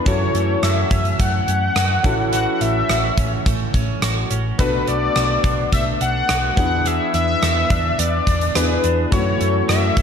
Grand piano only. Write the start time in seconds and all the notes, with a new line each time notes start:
0.05 C#4 E4 F#4 A4
2.03 C#4 E4 F#4 A4
4.58 B3 D4 F#4 A4
6.56 B3 D4 E4 G#4
8.55 B3 D4 E4 G#4
9.11 A3 C#4 E4 F#4